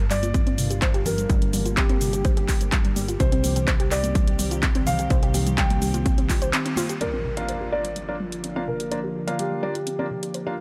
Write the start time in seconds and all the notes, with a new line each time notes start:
Already playing: G1 D3 G3 A#3 F4
0.10 G3 D5, clap, open hi-hat, cabasa
0.23 F4, closed hi-hat, high conga, cabasa
0.34 C4, kick, closed hi-hat, cabasa
0.47 C4, closed hi-hat
0.58 C3, open hi-hat, cabasa
0.70 G4, closed hi-hat, cabasa
0.82 C5, kick, clap, closed hi-hat, cabasa
0.94 G4, closed hi-hat
1.05 G4 A#4, open hi-hat, low conga, cabasa
1.18 G3, closed hi-hat, cabasa
1.30 G1 G3 G4, kick, closed hi-hat, cabasa
1.42 G3, closed hi-hat
1.53 G3, open hi-hat, low conga, cabasa
1.66 F4, closed hi-hat, cabasa
1.77 C4 G4, kick, clap, closed hi-hat, cabasa
1.89 C4, closed hi-hat
2.01 C3, open hi-hat, cabasa
2.13 G4, closed hi-hat, cabasa
2.25 C5, kick, closed hi-hat, cabasa
2.37 G4, closed hi-hat
2.48 G4, kick, clap, open hi-hat, cabasa
2.61 G3, closed hi-hat, cabasa
2.72 G3, kick, clap, closed hi-hat, cabasa
2.85 G3, closed hi-hat
2.96 G3, open hi-hat, high conga, cabasa
3.08 F4, closed hi-hat, cabasa
3.20 C2 D#3 C4 G4 C5, kick, closed hi-hat, cabasa
3.32 C4, closed hi-hat
3.44 C3, open hi-hat, high conga, low conga, cabasa
3.56 G4, closed hi-hat, low conga, cabasa
3.67 C5, kick, clap, closed hi-hat, cabasa
3.80 G4, closed hi-hat
3.91 G4 D5, clap, open hi-hat, cabasa
4.04 G3, closed hi-hat, high conga, cabasa
4.15 G3, kick, closed hi-hat, cabasa
4.27 G3, closed hi-hat
4.39 G3, open hi-hat, cabasa
4.51 F4, closed hi-hat, cabasa
4.63 C4, kick, clap, closed hi-hat, cabasa
4.75 C4, closed hi-hat
4.86 C3 F5, open hi-hat, low conga, cabasa
4.99 G4, closed hi-hat, cabasa
5.10 C2 C5, kick, closed hi-hat, cabasa
5.23 G4, closed hi-hat
5.34 G4, open hi-hat, high conga, low conga, cabasa
5.46 G3, closed hi-hat, low conga, cabasa
5.58 G3 G5, kick, clap, closed hi-hat, cabasa
5.70 G3, closed hi-hat, high conga
5.82 G3, open hi-hat, cabasa
5.94 F4, closed hi-hat, high conga, cabasa
6.06 C4, kick, closed hi-hat, cabasa
6.18 C4, closed hi-hat
6.29 F4, kick, clap, open hi-hat, cabasa
6.42 C5, closed hi-hat, cabasa
6.53 C4, clap, closed hi-hat, cabasa
6.66 C4, closed hi-hat
6.76 F4, open hi-hat, high conga, cabasa
6.89 G4, closed hi-hat, cabasa
7.01 D3 F3 A#3 C4 D4 F4 A#4 D5, closed hi-hat, impact
7.13 C4
7.25 C3
7.37 A#3 D4 F4 G4 F5, closed hi-hat
7.49 C5, closed hi-hat
7.61 G4
7.72 A#3 D4 F4 G4 D5
7.85 G3, closed hi-hat
7.96 G3, closed hi-hat
8.08 G3 A#3 D4 F4 D5
8.20 G3
8.32 F4, closed hi-hat
8.44 C4, closed hi-hat
8.56 A#3 C4 D4 F4 F5
8.68 C3 A#4
8.80 G4, closed hi-hat
8.91 A#3 D4 F4 G4 C5 D5, closed hi-hat
9.04 G4
9.15 G4
9.28 G3 A#3 D4 F4 F5, closed hi-hat
9.39 G3 G4, closed hi-hat
9.51 G3
9.63 G3 A#3 D4 F4 D5
9.75 F4, closed hi-hat
9.87 C4, closed hi-hat
9.99 A#3 C4 D4 F4 D5
10.10 C3
10.23 G4, closed hi-hat
10.34 C5, closed hi-hat
10.47 A#3 D4 F4 G4 F5